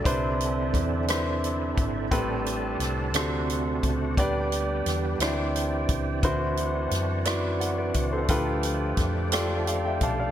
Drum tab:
HH |xxxxxx|xxxxxx|xxxxxx|xxxxxx|
SD |---r--|--rr--|--rr--|--rr--|
BD |o-o--o|o----o|o----o|o----o|

HH |xxxxxx|
SD |--rr--|
BD |o-o--o|